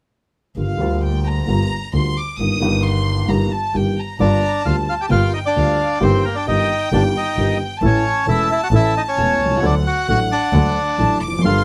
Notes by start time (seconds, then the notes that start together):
0.56 G1 G2 D3 G3 A#3 F4 F5
0.78 D2 D3 G3 A#3
0.82 F4
1.04 G5
1.25 A#5
1.47 G1 G2 D3 G3 A#3 F4
1.93 D2 D3 G3 A#3 F4 C6
2.19 D6
2.39 G1 G2 D#3 G3 A#3 G4 D#6
2.60 G1 G2 D#3 G3 A#3
2.64 G4
2.85 C6
3.28 G1 G2 D#3 G3 A#3 G4 A#5
3.51 A5
3.74 G1 G2 D#3 G3 A#3 G4 G5
3.98 A#5
4.20 G1 G2 D3 G3 A#3 D4 F4 D5 A#5
4.65 D2 D3 G3 A#3 F4 F5 A5
4.89 F4 F5
5.01 G4 G5
5.09 G1 G2 D3 G3 A#3 F4 F5 G5
5.34 D#4 D#5
5.46 D4 D5
5.56 D2 D3 G3 A#3 F4 F5
6.00 G1 G2 D#3 G3 A#3 C4 G4 C5 G5
6.25 A#3 A#4
6.35 D4 D5
6.47 G1 G2 D#3 G3 A#3 D#4 G4 D#5
6.92 G1 G2 D#3 G3 A#3 D4 G4 D5
7.17 D#4 D#5
7.37 G1 G2 D#3 G3 A#3 G4
7.81 A1 A2 E3 A3 C#4 A4 A5
7.87 C#5
8.27 E1 E2 E3 A3 C#4 E4 A4 E5
8.52 E4 E5
8.63 F#4 F#5
8.71 A1 A2 E3 A3 C#4 E4 A4
8.76 E5
8.97 D#4 D#5
9.08 C#4 C#5
9.18 E1 E2 E3 A3 C#4 A4
9.40 C2
9.46 B1
9.51 C2
9.57 C#2
9.62 D2 D3 F#3 A3 D4 A4 D5 F#5
9.87 F#4 F#5
10.08 A1 A2 F#3 A3 D4 F#4 A4 F#5
10.31 D4 D5
10.53 D2 D3 F#3 A3 D4 A4
10.98 A1 A2 F#3 A3 D4 A4 A5
11.21 F1 D6
11.28 E2
11.33 F2
11.39 F#2
11.43 G1 G2 G3 A#3 D4 F4 A4 F5 C6